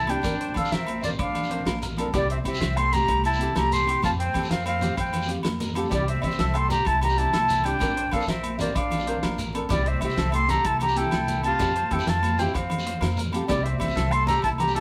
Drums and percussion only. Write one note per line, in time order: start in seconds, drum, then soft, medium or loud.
0.01 low conga medium
0.07 closed hi-hat soft
0.07 low agogo medium
0.17 high conga medium
0.17 low conga soft
0.23 kick medium
0.23 closed hi-hat medium
0.23 muted conga medium
0.23 low conga medium
0.23 low agogo medium
0.23 shekere medium
0.41 closed hi-hat soft
0.48 high conga medium
0.54 kick medium
0.54 closed hi-hat soft
0.54 low conga medium
0.54 low agogo medium
0.54 shekere soft
0.65 muted conga medium
0.65 shekere medium
0.72 snare medium
0.72 closed hi-hat medium
0.80 low conga medium
0.86 closed hi-hat soft
0.86 high conga medium
0.86 low conga soft
0.86 low agogo medium
1.03 closed hi-hat soft
1.03 muted conga medium
1.03 low conga medium
1.03 shekere medium
1.19 kick medium
1.19 closed hi-hat medium
1.19 low agogo medium
1.27 high conga medium
1.35 closed hi-hat soft
1.35 low conga medium
1.35 low agogo medium
1.35 shekere soft
1.43 muted conga medium
1.43 shekere medium
1.51 closed hi-hat soft
1.51 low conga soft
1.59 low conga medium
1.66 snare medium
1.66 closed hi-hat medium
1.66 high conga medium
1.66 low agogo medium
1.82 closed hi-hat soft
1.82 muted conga medium
1.82 shekere medium
1.90 low conga medium
1.98 closed hi-hat medium
1.98 low agogo medium
2.06 high conga medium
2.06 low conga soft
2.13 kick medium
2.13 closed hi-hat medium
2.13 muted conga medium
2.13 low conga medium
2.13 low agogo medium
2.13 shekere medium
2.30 closed hi-hat soft
2.38 high conga medium
2.45 kick medium
2.45 closed hi-hat medium
2.45 low agogo medium
2.45 shekere soft
2.53 muted conga medium
2.53 shekere medium
2.61 snare medium
2.61 closed hi-hat medium
2.69 low conga medium
2.77 closed hi-hat soft
2.77 high conga medium
2.77 low conga soft
2.77 low agogo medium
2.93 closed hi-hat soft
2.93 muted conga medium
2.93 low conga medium
2.93 shekere medium
3.08 kick medium
3.08 closed hi-hat medium
3.08 low agogo medium
3.17 high conga medium
3.24 closed hi-hat soft
3.24 low agogo medium
3.24 shekere soft
3.33 muted conga medium
3.33 low conga soft
3.33 shekere medium
3.41 closed hi-hat soft
3.41 low conga soft
3.49 low conga medium
3.56 snare medium
3.56 closed hi-hat medium
3.56 high conga medium
3.56 low agogo medium
3.72 closed hi-hat soft
3.72 muted conga medium
3.72 shekere medium
3.80 low conga medium
3.87 closed hi-hat soft
3.87 low agogo medium
3.95 high conga medium
3.95 low conga soft
4.03 kick medium
4.03 closed hi-hat medium
4.03 muted conga medium
4.03 low conga medium
4.03 low agogo medium
4.03 shekere loud
4.20 closed hi-hat soft
4.20 low conga soft
4.26 high conga medium
4.34 kick medium
4.34 closed hi-hat soft
4.34 low conga medium
4.34 low agogo medium
4.34 shekere soft
4.42 muted conga medium
4.42 shekere medium
4.51 snare medium
4.51 closed hi-hat medium
4.59 shekere soft
4.66 closed hi-hat soft
4.66 high conga medium
4.66 low agogo medium
4.73 low conga soft
4.81 closed hi-hat soft
4.81 muted conga medium
4.81 low conga medium
4.81 shekere medium
4.97 kick medium
4.97 closed hi-hat medium
4.97 low agogo medium
5.06 high conga medium
5.06 shekere soft
5.13 closed hi-hat soft
5.13 low conga medium
5.13 low agogo medium
5.13 shekere soft
5.20 muted conga medium
5.20 shekere medium
5.29 closed hi-hat medium
5.36 low conga medium
5.43 snare medium
5.43 closed hi-hat medium
5.43 high conga loud
5.43 low agogo medium
5.60 closed hi-hat soft
5.60 muted conga medium
5.60 shekere medium
5.68 low conga medium
5.68 shekere soft
5.75 closed hi-hat medium
5.75 low conga soft
5.75 low agogo medium
5.83 high conga medium
5.83 low conga soft
5.83 shekere soft
5.91 kick medium
5.91 closed hi-hat medium
5.91 muted conga loud
5.91 low conga loud
5.91 low agogo medium
5.91 shekere medium
6.08 closed hi-hat soft
6.15 high conga medium
6.22 kick medium
6.22 closed hi-hat soft
6.22 low conga medium
6.22 low agogo medium
6.22 shekere soft
6.31 muted conga medium
6.31 shekere medium
6.39 snare medium
6.39 closed hi-hat medium
6.47 low conga medium
6.54 closed hi-hat soft
6.54 high conga medium
6.54 low conga soft
6.54 low agogo medium
6.70 closed hi-hat soft
6.70 muted conga medium
6.70 low conga medium
6.70 shekere medium
6.85 kick medium
6.85 closed hi-hat medium
6.85 low agogo medium
6.95 high conga medium
7.02 closed hi-hat soft
7.02 low conga medium
7.02 low agogo medium
7.02 shekere soft
7.09 muted conga medium
7.09 low conga soft
7.09 shekere medium
7.18 closed hi-hat soft
7.18 low conga soft
7.26 low conga medium
7.33 snare medium
7.33 closed hi-hat medium
7.33 high conga medium
7.33 low agogo medium
7.49 closed hi-hat soft
7.49 muted conga medium
7.49 shekere medium
7.58 low conga medium
7.64 closed hi-hat soft
7.64 low agogo medium
7.73 high conga medium
7.73 low conga soft
7.80 kick medium
7.80 closed hi-hat medium
7.80 muted conga medium
7.80 low conga medium
7.80 low agogo medium
7.80 shekere medium
7.97 closed hi-hat medium
8.11 kick medium
8.11 snare soft
8.11 closed hi-hat medium
8.11 low conga medium
8.11 low agogo medium
8.11 shekere soft
8.20 muted conga medium
8.20 shekere medium
8.28 snare medium
8.28 closed hi-hat medium
8.36 low conga medium
8.43 closed hi-hat medium
8.43 high conga medium
8.43 low agogo medium
8.59 closed hi-hat soft
8.59 muted conga medium
8.59 low conga medium
8.59 shekere medium
8.75 kick medium
8.75 closed hi-hat medium
8.75 low agogo medium
8.91 closed hi-hat soft
8.91 low conga medium
8.91 low agogo medium
8.91 shekere soft
8.98 muted conga medium
8.98 low conga soft
8.98 shekere medium
9.06 closed hi-hat medium
9.06 low conga soft
9.14 low conga medium
9.23 snare medium
9.23 closed hi-hat medium
9.23 high conga medium
9.23 low agogo medium
9.38 closed hi-hat soft
9.38 muted conga medium
9.38 shekere medium
9.46 low conga medium
9.55 closed hi-hat soft
9.55 low agogo medium
9.61 low conga soft
9.69 kick medium
9.69 closed hi-hat medium
9.69 muted conga medium
9.69 low conga loud
9.69 low agogo medium
9.69 shekere medium
9.86 closed hi-hat soft
9.94 high conga medium
10.01 kick medium
10.01 closed hi-hat soft
10.01 low conga medium
10.01 low agogo medium
10.01 shekere soft
10.10 muted conga medium
10.10 shekere medium
10.17 snare medium
10.17 closed hi-hat medium
10.25 low conga medium
10.32 closed hi-hat soft
10.32 high conga medium
10.32 low conga soft
10.32 low agogo medium
10.49 closed hi-hat soft
10.49 muted conga medium
10.49 low conga medium
10.49 shekere medium
10.64 kick medium
10.64 closed hi-hat medium
10.64 low agogo medium
10.73 high conga medium
10.80 closed hi-hat soft
10.80 low conga loud
10.80 low agogo medium
10.80 shekere soft
10.88 muted conga medium
10.88 low conga soft
10.88 shekere medium
10.96 closed hi-hat medium
10.96 low conga soft
11.05 low conga medium
11.11 snare medium
11.11 closed hi-hat medium
11.11 high conga medium
11.11 low agogo medium
11.28 closed hi-hat soft
11.28 muted conga loud
11.28 shekere medium
11.36 low conga medium
11.43 closed hi-hat soft
11.43 low agogo medium
11.52 high conga medium
11.52 low conga soft
11.59 kick medium
11.59 closed hi-hat medium
11.59 muted conga loud
11.59 low conga loud
11.59 low agogo medium
11.59 shekere medium
11.75 closed hi-hat soft
11.83 high conga medium
11.91 kick medium
11.91 closed hi-hat soft
11.91 low conga medium
11.91 low agogo medium
11.99 muted conga medium
11.99 low conga soft
11.99 shekere medium
12.07 snare medium
12.07 closed hi-hat medium
12.15 low conga medium
12.23 closed hi-hat soft
12.23 high conga medium
12.23 low agogo medium
12.23 shekere soft
12.31 low conga soft
12.39 closed hi-hat soft
12.39 muted conga loud
12.39 low conga loud
12.39 shekere medium
12.47 low conga soft
12.47 shekere soft
12.54 kick medium
12.54 closed hi-hat medium
12.54 low agogo medium
12.54 shekere soft
12.63 low conga soft
12.70 closed hi-hat soft
12.70 low conga loud
12.70 low agogo medium
12.78 muted conga medium
12.78 shekere medium
12.86 closed hi-hat medium
12.94 low conga medium
13.01 snare medium
13.01 closed hi-hat medium
13.01 high conga medium
13.01 low conga soft
13.01 low agogo medium
13.09 low conga soft
13.09 shekere soft
13.17 closed hi-hat soft
13.17 muted conga medium
13.17 low conga soft
13.17 shekere medium
13.25 low conga medium
13.33 closed hi-hat medium
13.33 low conga soft
13.33 low agogo medium
13.33 shekere soft
13.41 high conga medium
13.41 low conga soft
13.48 kick medium
13.48 closed hi-hat medium
13.48 muted conga medium
13.48 low conga loud
13.48 low agogo medium
13.48 shekere medium
13.65 closed hi-hat soft
13.73 high conga medium
13.80 kick medium
13.80 closed hi-hat soft
13.80 low conga medium
13.80 low agogo medium
13.80 shekere soft
13.88 muted conga medium
13.88 shekere medium
13.97 snare medium
13.97 closed hi-hat medium
14.05 low conga medium
14.11 closed hi-hat soft
14.11 high conga medium
14.11 low conga soft
14.11 low agogo medium
14.27 closed hi-hat soft
14.27 muted conga loud
14.27 low conga loud
14.27 shekere medium
14.42 kick medium
14.42 closed hi-hat medium
14.42 low agogo medium
14.51 high conga medium
14.58 closed hi-hat soft
14.58 low conga loud
14.58 low agogo medium
14.58 shekere soft
14.68 muted conga medium
14.68 low conga soft
14.68 shekere medium
14.76 closed hi-hat soft
14.76 low conga soft